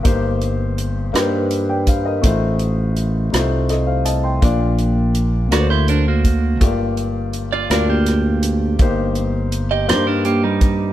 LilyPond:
<<
  \new Staff \with { instrumentName = "Clean electric guitar" } { \time 6/8 \key c \minor \tempo 4. = 55 r2. | r2. | r4. <fis' d''>16 <fes' c''>16 <d' bes'>16 <bes fis'>8. | r4 r16 <f' d''>16 <d' bes'>16 <bes g'>4~ <bes g'>16 |
r4 r16 <g' ees''>16 <ees' c''>16 <d' bes'>16 <bes g'>16 <g ees'>8. | }
  \new Staff \with { instrumentName = "Grand piano" } { \time 6/8 \key c \minor << { r2 r16 <d'' g''>16 <c'' f''>16 <bes' ees''>16~ | <bes' ees''>16 r4. r16 <a' ees''>16 <c'' f''>16 <ees'' a''>16 <g'' c'''>16~ | <g'' c'''>16 r2 r8. | r2. |
r2. | } \\ { <bes ees' g' c''>4~ <bes ees' g' c''>16 r16 <bes ees' g' ces'' c''>4~ <bes ees' g' ces'' c''>16 r16 | <a ees' f' c''>4~ <a ees' f' c''>16 r16 <g a ees' f' c''>4~ <g a ees' f' c''>16 r16 | <bes d' f' d''>4~ <bes d' f' d''>16 r16 <bes d' fis' ces'' c''>4~ <bes d' fis' ces'' c''>16 r16 | <a bes f' g' d''>4~ <a bes f' g' d''>16 r16 <bes f' g' d''>4~ <bes f' g' d''>16 r16 |
<bes ees' g' c''>4~ <bes ees' g' c''>16 r16 <bes d' ees' g' d''>4~ <bes d' ees' g' d''>16 r16 | } >> }
  \new Staff \with { instrumentName = "Grand piano" } { \clef bass \time 6/8 \key c \minor g,4. r4. | a,4. r4. | bes,4. d4. | g,4. r4. |
g,4. r4. | }
  \new Staff \with { instrumentName = "Fingered electric bass" } { \clef bass \time 6/8 \key c \minor g,,4. g,4. | a,,4. c,4. | bes,,4. d,4. | g,,4. d,4. |
g,,4. g,4. | }
  \new DrumStaff \with { instrumentName = "Drums" } \drummode { \time 6/8 <hh bd>8 hh8 hh8 <hh ss>8 hh8 <hh bd>8 | <hh bd>8 hh8 hh8 <hh ss>8 <hh ss>8 hh8 | <hh bd>8 hh8 hh8 <hh ss>8 hh8 <hh bd>8 | <hh bd>8 hh8 hh8 <hh ss>8 <hh ss>8 hh8 |
<hh bd>8 hh8 hh8 <hh ss>8 hh8 <hh bd>8 | }
>>